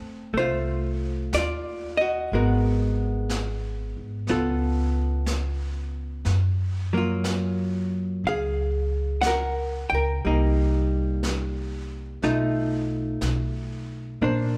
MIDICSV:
0, 0, Header, 1, 5, 480
1, 0, Start_track
1, 0, Tempo, 991736
1, 1124, Time_signature, 4, 2, 24, 8
1, 7055, End_track
2, 0, Start_track
2, 0, Title_t, "Hollow-body jazz guitar"
2, 0, Program_c, 0, 26
2, 0, Note_on_c, 0, 57, 49
2, 0, Note_on_c, 0, 60, 58
2, 0, Note_on_c, 0, 69, 72
2, 150, Note_off_c, 0, 60, 0
2, 158, Note_off_c, 0, 57, 0
2, 163, Note_on_c, 0, 57, 36
2, 180, Note_off_c, 0, 69, 0
2, 181, Note_on_c, 0, 72, 87
2, 190, Note_on_c, 0, 65, 63
2, 638, Note_off_c, 0, 65, 0
2, 649, Note_off_c, 0, 72, 0
2, 651, Note_on_c, 0, 74, 88
2, 662, Note_on_c, 0, 65, 69
2, 954, Note_off_c, 0, 65, 0
2, 954, Note_off_c, 0, 74, 0
2, 956, Note_on_c, 0, 75, 88
2, 974, Note_on_c, 0, 66, 65
2, 1125, Note_off_c, 0, 57, 0
2, 1129, Note_off_c, 0, 66, 0
2, 1129, Note_on_c, 0, 56, 48
2, 1135, Note_on_c, 0, 66, 48
2, 1136, Note_off_c, 0, 75, 0
2, 1137, Note_on_c, 0, 59, 49
2, 1138, Note_on_c, 0, 70, 57
2, 2073, Note_off_c, 0, 59, 0
2, 2079, Note_on_c, 0, 59, 46
2, 2080, Note_off_c, 0, 66, 0
2, 2082, Note_on_c, 0, 65, 51
2, 2084, Note_off_c, 0, 70, 0
2, 2085, Note_off_c, 0, 56, 0
2, 2086, Note_on_c, 0, 69, 55
2, 3039, Note_off_c, 0, 59, 0
2, 3040, Note_off_c, 0, 65, 0
2, 3043, Note_off_c, 0, 69, 0
2, 3355, Note_on_c, 0, 54, 41
2, 3361, Note_on_c, 0, 58, 45
2, 3376, Note_on_c, 0, 65, 57
2, 3986, Note_off_c, 0, 65, 0
2, 4002, Note_on_c, 0, 77, 88
2, 4010, Note_on_c, 0, 68, 67
2, 4458, Note_off_c, 0, 77, 0
2, 4460, Note_on_c, 0, 78, 90
2, 4464, Note_off_c, 0, 68, 0
2, 4485, Note_on_c, 0, 70, 70
2, 4770, Note_off_c, 0, 78, 0
2, 4783, Note_off_c, 0, 70, 0
2, 4790, Note_on_c, 0, 79, 86
2, 4814, Note_on_c, 0, 70, 66
2, 4955, Note_off_c, 0, 54, 0
2, 4958, Note_off_c, 0, 58, 0
2, 4960, Note_on_c, 0, 55, 49
2, 4967, Note_off_c, 0, 70, 0
2, 4969, Note_on_c, 0, 58, 46
2, 4969, Note_on_c, 0, 63, 51
2, 5736, Note_off_c, 0, 79, 0
2, 5918, Note_off_c, 0, 63, 0
2, 5920, Note_off_c, 0, 55, 0
2, 5922, Note_off_c, 0, 58, 0
2, 5922, Note_on_c, 0, 57, 48
2, 5924, Note_on_c, 0, 63, 49
2, 5926, Note_on_c, 0, 65, 50
2, 6881, Note_off_c, 0, 57, 0
2, 6883, Note_on_c, 0, 58, 46
2, 6884, Note_off_c, 0, 63, 0
2, 6886, Note_off_c, 0, 65, 0
2, 6886, Note_on_c, 0, 62, 52
2, 6892, Note_on_c, 0, 72, 53
2, 7055, Note_off_c, 0, 58, 0
2, 7055, Note_off_c, 0, 62, 0
2, 7055, Note_off_c, 0, 72, 0
2, 7055, End_track
3, 0, Start_track
3, 0, Title_t, "Upright bass"
3, 0, Program_c, 1, 32
3, 159, Note_on_c, 1, 36, 76
3, 623, Note_off_c, 1, 36, 0
3, 643, Note_on_c, 1, 39, 73
3, 1105, Note_off_c, 1, 39, 0
3, 1122, Note_on_c, 1, 32, 74
3, 1904, Note_off_c, 1, 32, 0
3, 1920, Note_on_c, 1, 44, 56
3, 2070, Note_off_c, 1, 44, 0
3, 2082, Note_on_c, 1, 37, 84
3, 3021, Note_off_c, 1, 37, 0
3, 3028, Note_on_c, 1, 42, 80
3, 3972, Note_off_c, 1, 42, 0
3, 3988, Note_on_c, 1, 37, 79
3, 4774, Note_off_c, 1, 37, 0
3, 4797, Note_on_c, 1, 37, 70
3, 4946, Note_off_c, 1, 37, 0
3, 4963, Note_on_c, 1, 36, 80
3, 5902, Note_off_c, 1, 36, 0
3, 5916, Note_on_c, 1, 35, 76
3, 6380, Note_off_c, 1, 35, 0
3, 6394, Note_on_c, 1, 35, 69
3, 6861, Note_off_c, 1, 35, 0
3, 6879, Note_on_c, 1, 34, 82
3, 7055, Note_off_c, 1, 34, 0
3, 7055, End_track
4, 0, Start_track
4, 0, Title_t, "Muted upright bass strokes"
4, 6, Note_on_c, 9, 29, 32
4, 54, Note_off_c, 9, 29, 0
4, 7055, End_track
5, 0, Start_track
5, 0, Title_t, "Drums"
5, 162, Note_on_c, 9, 25, 38
5, 642, Note_off_c, 9, 25, 0
5, 642, Note_on_c, 9, 25, 34
5, 642, Note_on_c, 9, 38, 46
5, 642, Note_on_c, 9, 44, 53
5, 691, Note_off_c, 9, 38, 0
5, 691, Note_off_c, 9, 44, 0
5, 1115, Note_off_c, 9, 25, 0
5, 1115, Note_on_c, 9, 25, 37
5, 1594, Note_off_c, 9, 25, 0
5, 1594, Note_on_c, 9, 25, 35
5, 1594, Note_on_c, 9, 38, 44
5, 1594, Note_on_c, 9, 44, 50
5, 1643, Note_off_c, 9, 38, 0
5, 1643, Note_off_c, 9, 44, 0
5, 2067, Note_off_c, 9, 25, 0
5, 2067, Note_on_c, 9, 25, 41
5, 2067, Note_on_c, 9, 38, 30
5, 2115, Note_off_c, 9, 38, 0
5, 2547, Note_off_c, 9, 25, 0
5, 2547, Note_on_c, 9, 25, 35
5, 2547, Note_on_c, 9, 38, 45
5, 2547, Note_on_c, 9, 44, 52
5, 2596, Note_off_c, 9, 38, 0
5, 2596, Note_off_c, 9, 44, 0
5, 3024, Note_off_c, 9, 25, 0
5, 3024, Note_on_c, 9, 25, 37
5, 3024, Note_on_c, 9, 38, 30
5, 3072, Note_off_c, 9, 38, 0
5, 3504, Note_off_c, 9, 25, 0
5, 3504, Note_on_c, 9, 25, 33
5, 3504, Note_on_c, 9, 38, 42
5, 3504, Note_on_c, 9, 44, 56
5, 3552, Note_off_c, 9, 38, 0
5, 3552, Note_off_c, 9, 44, 0
5, 3983, Note_off_c, 9, 25, 0
5, 3983, Note_on_c, 9, 25, 32
5, 4464, Note_off_c, 9, 25, 0
5, 4464, Note_on_c, 9, 25, 42
5, 4464, Note_on_c, 9, 38, 47
5, 4464, Note_on_c, 9, 44, 54
5, 4513, Note_off_c, 9, 38, 0
5, 4513, Note_off_c, 9, 44, 0
5, 4949, Note_off_c, 9, 25, 0
5, 4949, Note_on_c, 9, 25, 38
5, 5435, Note_off_c, 9, 25, 0
5, 5435, Note_on_c, 9, 25, 34
5, 5435, Note_on_c, 9, 38, 47
5, 5435, Note_on_c, 9, 44, 57
5, 5483, Note_off_c, 9, 38, 0
5, 5483, Note_off_c, 9, 44, 0
5, 5916, Note_off_c, 9, 25, 0
5, 5916, Note_on_c, 9, 25, 34
5, 5916, Note_on_c, 9, 38, 28
5, 5964, Note_off_c, 9, 38, 0
5, 6394, Note_off_c, 9, 25, 0
5, 6394, Note_on_c, 9, 25, 37
5, 6394, Note_on_c, 9, 38, 45
5, 6394, Note_on_c, 9, 44, 57
5, 6443, Note_off_c, 9, 38, 0
5, 6443, Note_off_c, 9, 44, 0
5, 6878, Note_off_c, 9, 25, 0
5, 6878, Note_on_c, 9, 25, 35
5, 7055, Note_off_c, 9, 25, 0
5, 7055, End_track
0, 0, End_of_file